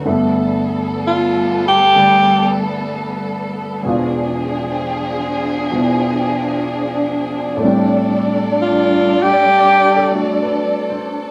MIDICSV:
0, 0, Header, 1, 4, 480
1, 0, Start_track
1, 0, Key_signature, 1, "major"
1, 0, Tempo, 943396
1, 29, Time_signature, 4, 2, 24, 8
1, 5754, End_track
2, 0, Start_track
2, 0, Title_t, "Alto saxophone"
2, 0, Program_c, 0, 65
2, 546, Note_on_c, 0, 65, 65
2, 834, Note_off_c, 0, 65, 0
2, 855, Note_on_c, 0, 67, 93
2, 1307, Note_off_c, 0, 67, 0
2, 4386, Note_on_c, 0, 65, 77
2, 4696, Note_on_c, 0, 67, 99
2, 4703, Note_off_c, 0, 65, 0
2, 5164, Note_off_c, 0, 67, 0
2, 5754, End_track
3, 0, Start_track
3, 0, Title_t, "String section"
3, 0, Program_c, 1, 48
3, 33, Note_on_c, 1, 59, 57
3, 33, Note_on_c, 1, 69, 73
3, 36, Note_on_c, 1, 55, 69
3, 1938, Note_off_c, 1, 59, 0
3, 1938, Note_off_c, 1, 69, 0
3, 1940, Note_off_c, 1, 55, 0
3, 1962, Note_on_c, 1, 53, 70
3, 1962, Note_on_c, 1, 62, 65
3, 1963, Note_on_c, 1, 68, 80
3, 3860, Note_off_c, 1, 53, 0
3, 3861, Note_off_c, 1, 68, 0
3, 3879, Note_on_c, 1, 74, 72
3, 3881, Note_on_c, 1, 69, 59
3, 3884, Note_on_c, 1, 55, 70
3, 5754, Note_off_c, 1, 55, 0
3, 5754, Note_off_c, 1, 62, 0
3, 5754, Note_off_c, 1, 69, 0
3, 5754, Note_off_c, 1, 74, 0
3, 5754, End_track
4, 0, Start_track
4, 0, Title_t, "Grand piano"
4, 0, Program_c, 2, 0
4, 0, Control_c, 2, 64, 127
4, 0, Note_on_c, 2, 71, 41
4, 28, Note_on_c, 2, 43, 48
4, 28, Note_on_c, 2, 50, 46
4, 30, Note_on_c, 2, 59, 44
4, 31, Note_on_c, 2, 57, 45
4, 34, Note_on_c, 2, 76, 56
4, 35, Control_c, 2, 64, 0
4, 118, Note_off_c, 2, 71, 0
4, 119, Control_c, 2, 64, 127
4, 982, Note_off_c, 2, 50, 0
4, 989, Note_off_c, 2, 57, 0
4, 989, Note_on_c, 2, 50, 34
4, 995, Note_on_c, 2, 55, 38
4, 997, Note_on_c, 2, 57, 35
4, 1006, Note_on_c, 2, 62, 46
4, 1947, Note_on_c, 2, 40, 55
4, 1953, Note_off_c, 2, 50, 0
4, 1955, Note_off_c, 2, 43, 0
4, 1955, Note_off_c, 2, 55, 0
4, 1956, Note_off_c, 2, 57, 0
4, 1956, Note_off_c, 2, 59, 0
4, 1957, Note_on_c, 2, 47, 50
4, 1958, Note_off_c, 2, 76, 0
4, 1961, Note_off_c, 2, 62, 0
4, 1961, Control_c, 2, 64, 0
4, 1962, Note_on_c, 2, 56, 43
4, 1970, Note_on_c, 2, 62, 47
4, 1974, Note_on_c, 2, 65, 58
4, 2037, Control_c, 2, 64, 127
4, 2900, Note_off_c, 2, 47, 0
4, 2908, Note_on_c, 2, 47, 39
4, 2911, Note_on_c, 2, 53, 34
4, 2920, Note_on_c, 2, 59, 37
4, 2924, Note_on_c, 2, 64, 41
4, 3850, Note_on_c, 2, 45, 51
4, 3863, Note_on_c, 2, 57, 50
4, 3872, Note_off_c, 2, 40, 0
4, 3872, Note_off_c, 2, 47, 0
4, 3872, Note_on_c, 2, 55, 50
4, 3873, Note_off_c, 2, 53, 0
4, 3878, Note_off_c, 2, 59, 0
4, 3879, Note_off_c, 2, 56, 0
4, 3879, Note_off_c, 2, 64, 0
4, 3883, Note_off_c, 2, 62, 0
4, 3883, Control_c, 2, 64, 0
4, 3883, Note_on_c, 2, 60, 42
4, 3885, Note_off_c, 2, 65, 0
4, 3893, Note_on_c, 2, 62, 46
4, 3904, Note_on_c, 2, 67, 55
4, 3964, Control_c, 2, 64, 127
4, 5070, Note_on_c, 2, 69, 43
4, 5138, Note_off_c, 2, 57, 0
4, 5146, Note_on_c, 2, 57, 43
4, 5161, Note_on_c, 2, 66, 43
4, 5304, Note_on_c, 2, 71, 47
4, 5408, Note_off_c, 2, 69, 0
4, 5544, Note_on_c, 2, 72, 49
4, 5686, Note_off_c, 2, 71, 0
4, 5754, Note_off_c, 2, 45, 0
4, 5754, Note_off_c, 2, 55, 0
4, 5754, Note_off_c, 2, 57, 0
4, 5754, Note_off_c, 2, 60, 0
4, 5754, Note_off_c, 2, 62, 0
4, 5754, Note_off_c, 2, 66, 0
4, 5754, Note_off_c, 2, 67, 0
4, 5754, Note_off_c, 2, 72, 0
4, 5754, End_track
0, 0, End_of_file